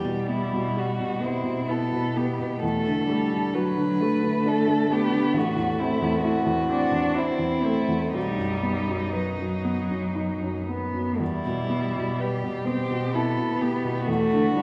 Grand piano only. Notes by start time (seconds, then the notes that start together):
Already playing: E2
0.04 B2
0.28 B3
0.53 B2
0.77 G4
1.00 B2
1.23 B3
1.44 B2
1.68 E4
1.92 B2
2.17 B3
2.39 B2
2.62 E2
2.87 D3
3.09 A3
3.33 D3
3.55 F#4
3.77 D3
4.02 A3
4.23 D3
4.46 D4
4.67 D3
4.90 A3
5.11 D3
5.33 A1
5.56 E2
5.79 C4
6.02 E2
6.24 E4
6.46 E2
6.69 C4
6.92 E2
7.15 E4
7.39 E2
7.63 C4
7.88 E2
8.14 B1
8.38 F#2
8.63 B3
8.88 F#2
9.13 B4
9.38 F#2
9.65 B3
9.90 F#2
10.15 D#4
10.42 F#2
10.69 B3
10.94 F#2
11.20 E2
11.45 B2
11.70 B3
11.96 B2
12.19 B4
12.44 B2
12.67 B3
12.91 B2
13.15 E4
13.38 B2
13.62 B3
13.84 B2
14.08 E2
14.33 D3
14.57 D4